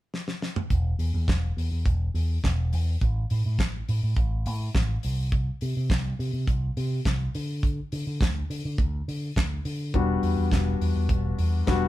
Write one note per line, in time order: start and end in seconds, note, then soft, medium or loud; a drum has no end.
0.14 snare medium
0.28 snare medium
0.42 snare medium
0.56 mid tom loud
0.70 0.93 E1 medium
0.70 kick medium
0.70 closed hi-hat medium
0.99 1.10 E2 medium
0.99 open hi-hat soft
1.14 1.25 E2 loud
1.28 1.50 E1 medium
1.28 kick loud
1.28 snare loud
1.28 clap medium
1.28 closed hi-hat medium
1.57 1.68 E2 medium
1.57 open hi-hat medium
1.72 1.83 E2 medium
1.86 2.08 E1 medium
1.86 kick loud
1.86 closed hi-hat medium
2.15 2.37 E2 loud
2.15 open hi-hat soft
2.44 2.73 E1 medium
2.44 kick medium
2.44 snare medium
2.44 clap medium
2.44 closed hi-hat medium
2.73 2.95 E2 medium
2.73 open hi-hat medium
3.01 3.24 A1 medium
3.01 kick loud
3.01 closed hi-hat medium
3.30 3.42 A2 medium
3.30 open hi-hat soft
3.46 3.59 A2 medium
3.59 3.82 A1 medium
3.59 kick loud
3.59 snare loud
3.59 clap medium
3.59 closed hi-hat medium
3.89 4.00 A2 medium
3.89 open hi-hat medium
4.03 4.14 A2 medium
4.16 4.47 A1 loud
4.16 kick loud
4.16 closed hi-hat medium
4.46 4.69 A2 medium
4.46 open hi-hat medium
4.75 4.97 A1 medium
4.75 kick loud
4.75 snare loud
4.75 clap medium
4.75 closed hi-hat medium
5.03 5.49 C2 medium
5.03 open hi-hat medium
5.32 kick loud
5.32 closed hi-hat medium
5.61 5.73 C3 medium
5.61 open hi-hat soft
5.77 5.92 C3 medium
5.90 6.12 C2 medium
5.90 kick loud
5.90 snare loud
5.90 clap medium
5.90 closed hi-hat medium
6.19 6.30 C3 medium
6.19 open hi-hat medium
6.33 6.44 C3 loud
6.47 6.70 C2 medium
6.47 kick loud
6.47 closed hi-hat medium
6.77 6.99 C3 loud
6.77 open hi-hat soft
7.05 7.28 C2 medium
7.05 kick loud
7.05 snare loud
7.05 clap medium
7.05 closed hi-hat medium
7.35 7.79 D3 medium
7.35 open hi-hat medium
7.63 kick medium
7.63 closed hi-hat medium
7.92 8.03 D3 medium
7.92 open hi-hat medium
8.07 8.18 D3 medium
8.20 8.43 D2 medium
8.20 kick loud
8.20 snare loud
8.20 clap medium
8.20 closed hi-hat medium
8.50 8.61 D3 medium
8.50 open hi-hat medium
8.65 8.76 D3 medium
8.78 9.01 D2 loud
8.78 kick loud
8.78 closed hi-hat medium
9.08 9.30 D3 medium
9.08 open hi-hat medium
9.36 9.59 D2 medium
9.36 kick loud
9.36 snare loud
9.36 clap medium
9.36 closed hi-hat medium
9.65 9.95 D3 medium
9.65 open hi-hat medium
9.94 10.16 E1 medium
9.94 10.78 G3 medium
9.94 10.78 B3 medium
9.94 10.79 D4 medium
9.94 10.79 F#4 medium
9.94 kick loud
9.94 closed hi-hat medium
10.23 10.34 E2 medium
10.23 open hi-hat medium
10.37 10.48 E2 medium
10.51 10.74 E1 medium
10.51 kick loud
10.51 snare loud
10.51 clap medium
10.51 closed hi-hat medium
10.81 10.92 E2 medium
10.81 open hi-hat medium
10.96 11.07 E2 medium
11.09 11.32 E1 medium
11.09 kick loud
11.09 closed hi-hat medium
11.38 11.61 E2 medium
11.38 open hi-hat soft
11.67 11.88 E1 medium
11.67 11.88 G3 medium
11.67 11.88 B3 medium
11.67 11.88 D4 medium
11.67 11.88 F#4 loud
11.67 kick loud
11.67 snare loud
11.67 clap medium
11.67 closed hi-hat medium